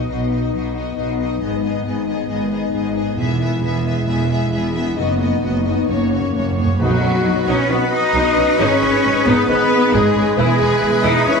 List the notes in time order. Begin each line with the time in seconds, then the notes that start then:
Already playing: B2 F#3 B3 D#4 B4
0.08 B1 B2 D#4 F#4 D#5
0.31 D#4 F#4 D#5
0.53 B1 B2 F#3 D#4 F#4 D#5
0.74 D#4 F#4 D#5
0.96 B1 B2 D#4 F#4 D#5
1.19 D#4 F#4 D#5
1.41 G#1 G#2 B3 G#4 D#5
1.64 B3 D#4 G#4 D#5
1.85 G#1 G#2 B3 G#4 D#5
2.07 B3 D#4 G#4 D#5
2.28 G#1 G#2 D#3 B3 G#4 D#5
2.50 B3 D#4 G#4 D#5
2.72 G#1 G#2 B3 G#4 D#5
2.95 B3 D#4 G#4 D#5
3.17 E1 E2 G#3 B3 E4 G#4 E5
3.39 B3 E4 G#4 E5
3.62 E1 E2 B3 G#4 E5
3.84 B3 E4 G#4 E5
4.06 E1 E2 B2 B3 G#4 E5
4.29 B3 E4 G#4 E5
4.51 E1 E2 B3 G#4 E5
4.74 B3 E4 G#4 E5
4.96 F#1 F#2 B3 D#4 F#4 D#5
5.18 B3 D#4 F#4 D#5
5.41 F#1 F#2 B3 F#4 D#5
5.65 B3 D#4 F#4 D#5
5.88 F#1 F#2 A#3 C#4 F#4 C#5
5.96 F#2
6.04 F#2
6.10 F#2 A#3 C#4 F#4 C#5
6.19 F#2
6.27 F#2
6.34 F#1 F#2 A#3 F#4 C#5
6.42 F#2
6.50 F#2
6.56 F#2 A#3 C#4 F#4 C#5
6.65 F#2
6.79 B1 B2 F#3 D#4 F#4 B4 D#5 B5
7.03 B1 C#4 D#4
7.24 B1 D#4 B4
7.46 B1 C#4 D#4 F#4 C#5
7.68 B1 F#3 B3 C#4 D#4 F#4 B4 D#5
7.91 D#4 D#5
8.14 B1 D#4 B4
8.37 B1 C#4 F#4
8.57 G#1 G#2 C#4 D#4 G#4 B4 C#5 D#5
8.82 G#1 C#4 D#4
9.04 G#1 D#4 B4
9.26 G#1 B3 D#4 G#4 B4
9.47 G#1 D#3 B3 C#4 D#4 G#4 B4 D#5
9.71 D#4
9.93 G#1 G#3 D#4 G#4 B4 D#5
10.15 G#1 C#4
10.37 E1 E2 G#3 E4 G#4 B4 E5 B5
10.59 E1 D#4 E4
10.81 E1 E4 B4
11.03 E1 D#4 E4 G#4 D#5
11.25 E1 B2 C#4 D#4 E4 B4 C#5